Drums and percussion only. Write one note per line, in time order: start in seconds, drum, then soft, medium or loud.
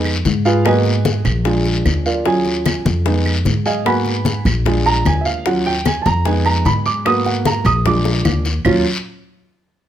0.05 high bongo soft
0.05 high conga soft
0.05 claves medium
0.25 high bongo soft
0.25 low bongo medium
0.25 high conga medium
0.25 short guiro medium
0.45 high conga soft
0.45 short guiro medium
0.65 high bongo medium
0.65 high conga soft
0.65 long guiro medium
0.65 claves medium
0.86 high bongo soft
0.86 high conga soft
1.05 high bongo medium
1.05 high conga loud
1.05 short guiro medium
1.25 high bongo soft
1.25 high conga soft
1.25 low conga medium
1.25 short guiro medium
1.25 claves medium
1.45 high bongo medium
1.45 high conga soft
1.45 long guiro medium
1.65 high bongo soft
1.65 high conga soft
1.86 high bongo soft
1.86 low bongo medium
1.86 high conga medium
1.86 short guiro medium
1.86 claves medium
2.06 high conga soft
2.06 short guiro medium
2.26 high bongo medium
2.26 high conga soft
2.26 long guiro medium
2.45 high bongo soft
2.45 high conga soft
2.66 high bongo medium
2.66 high conga medium
2.66 short guiro medium
2.66 claves medium
2.86 high bongo soft
2.86 high conga loud
2.86 short guiro medium
3.06 high bongo medium
3.06 high conga soft
3.06 long guiro medium
3.26 high bongo soft
3.26 high conga soft
3.26 claves medium
3.45 high bongo soft
3.45 low bongo medium
3.45 high conga medium
3.45 short guiro medium
3.65 high conga soft
3.65 short guiro medium
3.85 high bongo medium
3.85 high conga soft
3.85 long guiro medium
3.85 claves medium
4.06 high bongo soft
4.06 high conga soft
4.25 high bongo medium
4.25 high conga medium
4.25 short guiro medium
4.45 high bongo soft
4.45 high conga soft
4.45 low conga medium
4.45 short guiro medium
4.45 claves medium
4.65 high bongo medium
4.65 high conga soft
4.65 low conga medium
4.65 long guiro medium
4.86 high bongo soft
4.86 high conga soft
5.05 high bongo soft
5.05 low bongo medium
5.05 high conga medium
5.05 short guiro medium
5.05 claves medium
5.25 high conga soft
5.25 short guiro medium
5.46 high bongo medium
5.46 high conga soft
5.46 long guiro medium
5.66 high bongo soft
5.66 high conga soft
5.86 high bongo medium
5.86 high conga loud
5.86 short guiro medium
5.86 claves medium
6.06 high bongo soft
6.06 high conga loud
6.06 short guiro medium
6.25 high bongo medium
6.25 high conga soft
6.25 long guiro medium
6.46 high bongo soft
6.46 high conga soft
6.46 claves medium
6.65 high bongo soft
6.65 low bongo medium
6.65 high conga medium
6.65 short guiro medium
6.86 high conga soft
6.86 short guiro medium
7.05 high bongo medium
7.05 high conga soft
7.05 long guiro medium
7.05 claves medium
7.25 high bongo soft
7.25 high conga soft
7.45 high bongo medium
7.45 high conga loud
7.45 short guiro medium
7.65 high bongo soft
7.65 high conga soft
7.65 low conga medium
7.65 short guiro medium
7.65 claves medium
7.86 high bongo medium
7.86 high conga soft
7.86 low conga medium
7.86 long guiro medium
8.05 high bongo medium
8.05 high conga soft
8.25 low bongo medium
8.25 high conga medium
8.25 short guiro medium
8.25 claves medium
8.45 low bongo medium
8.45 high conga soft
8.45 short guiro medium
8.65 low bongo medium
8.65 low conga loud
8.65 long guiro medium
8.65 claves loud